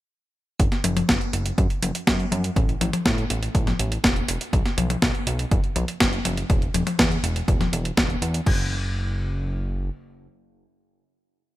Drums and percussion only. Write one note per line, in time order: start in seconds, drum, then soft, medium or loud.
0.60 kick loud
0.60 closed hi-hat medium
0.72 snare soft
0.72 closed hi-hat soft
0.84 closed hi-hat medium
0.84 high tom medium
0.97 closed hi-hat medium
0.97 high tom medium
1.09 kick loud
1.09 snare loud
1.09 closed hi-hat medium
1.21 closed hi-hat soft
1.33 closed hi-hat medium
1.46 closed hi-hat medium
1.58 kick loud
1.58 closed hi-hat medium
1.70 closed hi-hat soft
1.83 closed hi-hat medium
1.83 high tom medium
1.95 closed hi-hat medium
2.07 kick loud
2.07 snare loud
2.07 closed hi-hat medium
2.20 closed hi-hat soft
2.32 closed hi-hat medium
2.32 high tom medium
2.44 closed hi-hat medium
2.56 kick loud
2.56 closed hi-hat medium
2.69 closed hi-hat soft
2.81 closed hi-hat medium
2.81 high tom medium
2.93 closed hi-hat medium
2.93 high tom medium
3.06 kick loud
3.06 snare loud
3.06 closed hi-hat medium
3.18 closed hi-hat soft
3.30 closed hi-hat loud
3.43 closed hi-hat medium
3.55 kick loud
3.55 closed hi-hat medium
3.67 snare soft
3.67 closed hi-hat soft
3.67 high tom medium
3.79 closed hi-hat medium
3.92 closed hi-hat medium
4.04 kick loud
4.04 snare loud
4.04 closed hi-hat medium
4.16 closed hi-hat soft
4.28 closed hi-hat loud
4.41 closed hi-hat medium
4.53 kick loud
4.53 closed hi-hat medium
4.66 snare soft
4.66 closed hi-hat soft
4.78 closed hi-hat medium
4.78 high tom medium
4.90 closed hi-hat medium
4.90 high tom medium
5.02 kick loud
5.02 snare loud
5.02 closed hi-hat medium
5.15 closed hi-hat soft
5.27 closed hi-hat medium
5.39 closed hi-hat medium
5.51 kick loud
5.51 closed hi-hat medium
5.64 closed hi-hat soft
5.76 closed hi-hat medium
5.76 high tom medium
5.88 closed hi-hat medium
6.00 kick loud
6.00 snare loud
6.00 closed hi-hat medium
6.13 closed hi-hat soft
6.25 closed hi-hat loud
6.25 high tom medium
6.37 closed hi-hat medium
6.50 kick loud
6.50 closed hi-hat medium
6.62 closed hi-hat soft
6.74 closed hi-hat medium
6.74 high tom medium
6.87 closed hi-hat soft
6.87 high tom medium
6.99 kick loud
6.99 snare loud
6.99 closed hi-hat medium
7.12 closed hi-hat soft
7.24 closed hi-hat medium
7.36 closed hi-hat soft
7.48 kick loud
7.48 closed hi-hat soft
7.61 snare soft
7.61 closed hi-hat soft
7.61 high tom medium
7.73 closed hi-hat medium
7.85 closed hi-hat medium
7.97 kick loud
7.97 snare loud
7.97 closed hi-hat medium
8.10 closed hi-hat soft
8.22 closed hi-hat medium
8.34 closed hi-hat medium
8.46 kick loud
8.46 crash medium